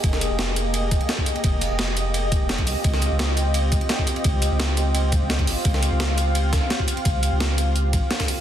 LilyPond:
<<
  \new Staff \with { instrumentName = "Analog synth pad" } { \time 4/4 \key des \lydian \tempo 4 = 171 << { ees''1~ | ees''1~ | ees''1~ | ees''2.~ ees''8 f''8~ |
f''1~ | f''1 | } \\ { <bes g' aes'>1~ | <bes g' aes'>2.~ <bes g' aes'>8 <c' f'>8~ | <c' f'>1~ | <c' f'>1~ |
<c' f'>1~ | <c' f'>1 | } >> }
  \new Staff \with { instrumentName = "Sub bass" } { \clef bass \time 4/4 \key des \lydian f,,8. f,,2 r4 r16 | f,,8. f,,2 f,,16 f,,16 c,16 des,16 r16 | des,8. des,2 r4 r16 | des,8. des,2 des,8. aes,,16 r16 |
des,8. des,2 r4 r16 | des,8. des,4.~ des,16 aes,,16 r4 r16 | }
  \new DrumStaff \with { instrumentName = "Drums" } \drummode { \time 4/4 <hh bd cymr>16 sn16 <hh cymr>8 <hh cymr sn>8 <hh cymr>8 <hh cymr>8 <hh bd cymr>16 cymr16 <hh cymr sn>16 bd16 <hh cymr>16 cymr16 | <hh bd cymr>8 <hh cymr>8 <hh cymr sn>8 <hh cymr>8 <hh cymr>8 <hh bd cymr>8 <hh cymr sn>16 <bd cymr>16 <hh hho>8 | <hh bd cymr>16 sn16 <hh cymr>8 <hh cymr sn>8 <hh cymr>8 <hh cymr>8 <hh bd cymr>16 cymr16 <hh cymr sn>16 bd16 <hh cymr>16 cymr16 | <hh bd cymr>8 <hh cymr>8 <hh cymr sn>8 <hh cymr>8 <hh cymr>8 <hh bd cymr>8 <hh cymr sn>16 <bd cymr>16 <hh hho>8 |
<hh bd cymr>16 sn16 <hh cymr>8 <hh cymr sn>8 <hh cymr>8 <hh cymr>8 <hh bd cymr sn>8 <hh cymr sn>16 bd16 <hh cymr>16 cymr16 | <hh bd cymr>8 <hh cymr>8 <hh cymr sn>8 <hh cymr>8 hh8 <hh bd cymr>8 <hh cymr sn>16 <bd cymr sn>16 <hh hho>8 | }
>>